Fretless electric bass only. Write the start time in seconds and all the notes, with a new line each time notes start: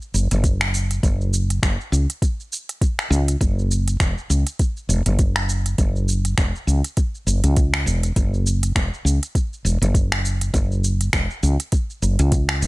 0.14 F#1
0.31 F#1
1.03 F#1
1.63 F#1
1.92 C#2
3.10 C#2
3.41 F#1
4.00 E1
4.30 C#2
4.89 E1
5.06 F#1
5.78 F#1
6.38 E1
6.67 C#2
7.27 F#1
7.44 C#2
7.86 E1
8.16 F#1
8.76 E1
9.05 C#2
9.65 E1
9.82 F#1
10.54 F#1
11.13 E1
11.43 C#2
12.02 F#1
12.19 C#2
12.62 E1